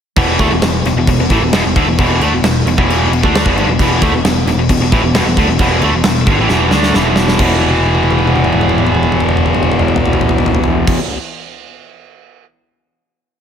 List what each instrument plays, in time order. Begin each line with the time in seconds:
0.16 picked electric bass E1, distorted electric guitar E2 B2 E3, kick, crash
0.39 picked electric bass D2, distorted electric guitar D3 A3, kick, crash
0.50 picked electric bass E1, distorted electric guitar E2 B2
0.62 picked electric bass E1, distorted electric guitar E2 B2, snare, crash
0.84 picked electric bass E1, distorted electric guitar E2 B2, snare, crash
0.94 picked electric bass E1, distorted electric guitar E2 B2
1.07 picked electric bass E1, distorted electric guitar E2 B2, kick, crash
1.19 picked electric bass E1, distorted electric guitar E2 B2
1.30 picked electric bass A1, distorted electric guitar A2 E3, kick, crash
1.40 picked electric bass E1, distorted electric guitar E2 B2
1.53 picked electric bass E1, distorted electric guitar E2 B2, snare, crash
1.64 picked electric bass E1, distorted electric guitar E2 B2
1.76 picked electric bass D2, distorted electric guitar D3 A3, kick, crash
1.86 picked electric bass E1, distorted electric guitar E2 B2
1.98 picked electric bass E1, distorted electric guitar E2 B2 E3, kick, crash
2.20 picked electric bass D2, distorted electric guitar D3 A3, crash
2.32 picked electric bass E1, distorted electric guitar E2 B2
2.42 picked electric bass E1, distorted electric guitar E2 B2, snare, crash
2.65 picked electric bass E1, distorted electric guitar E2 B2, crash
2.78 picked electric bass E1, distorted electric guitar E2 B2 E3, kick
2.90 crash
3.09 picked electric bass E1, distorted electric guitar E2, crash
3.14 distorted electric guitar B2
3.23 picked electric bass D2, distorted electric guitar D3 A3 D4, kick
3.35 snare, crash
3.46 picked electric bass E1, distorted electric guitar E2 B2, kick
3.55 picked electric bass G1, distorted electric guitar G2, crash
3.60 distorted electric guitar D3
3.67 picked electric bass E1, distorted electric guitar E2
3.71 distorted electric guitar B2
3.79 picked electric bass E1, distorted electric guitar E2 B2 E3, kick, crash
4.02 picked electric bass D2, distorted electric guitar D3 A3, kick, crash
4.12 picked electric bass E1, distorted electric guitar E2 B2
4.23 picked electric bass E1, distorted electric guitar E2 B2, snare, crash
4.45 picked electric bass E1, distorted electric guitar E2 B2, snare, crash
4.55 picked electric bass E1, distorted electric guitar E2
4.59 distorted electric guitar B2
4.69 picked electric bass E1, distorted electric guitar E2 B2, kick, crash
4.78 picked electric bass E1, distorted electric guitar E2
4.83 distorted electric guitar B2
4.92 picked electric bass A1, distorted electric guitar A2 E3, kick, crash
5.01 picked electric bass E1, distorted electric guitar E2 B2
5.14 picked electric bass E1, distorted electric guitar E2 B2, snare, crash
5.24 picked electric bass E1, distorted electric guitar E2 B2
5.37 picked electric bass D2, distorted electric guitar D3 A3, kick, crash
5.47 picked electric bass E1, distorted electric guitar E2 B2
5.59 picked electric bass E1, distorted electric guitar E2 B2 E3, kick, crash
5.81 picked electric bass D2, distorted electric guitar D3 A3, crash
5.92 picked electric bass E1, distorted electric guitar E2
5.96 distorted electric guitar B2
6.04 picked electric bass E1, snare, crash
6.08 distorted electric guitar E2 B2
6.27 picked electric bass G1, distorted electric guitar G2 D3, kick, crash
6.38 picked electric bass A1, distorted electric guitar A2 E3
6.49 picked electric bass E1, distorted electric guitar E2 B2 E3, snare
6.71 picked electric bass D2, distorted electric guitar D3 A3 D4, snare
6.83 snare
6.93 picked electric bass E1, distorted electric guitar E2 B2 E3, snare
7.16 snare
7.28 snare
7.39 picked electric bass E1, distorted electric guitar E2 B2, kick, crash
7.43 distorted electric guitar E3
7.61 high tom
7.70 high tom
7.77 high tom
7.86 high tom
7.95 high tom
8.03 high tom
8.11 high tom
8.19 high tom
8.27 high tom
8.36 high tom
8.44 mid tom
8.53 mid tom
8.61 mid tom
8.69 mid tom
8.78 mid tom
8.87 mid tom
8.95 mid tom
9.03 mid tom
9.12 mid tom
9.20 mid tom
9.29 mid tom
9.37 mid tom
9.46 mid tom
9.54 mid tom
9.63 mid tom
9.72 mid tom
9.79 mid tom
9.88 mid tom
9.96 floor tom
10.05 floor tom
10.13 floor tom
10.21 floor tom
10.29 floor tom
10.38 floor tom
10.46 floor tom
10.55 floor tom
10.64 floor tom
10.87 kick, crash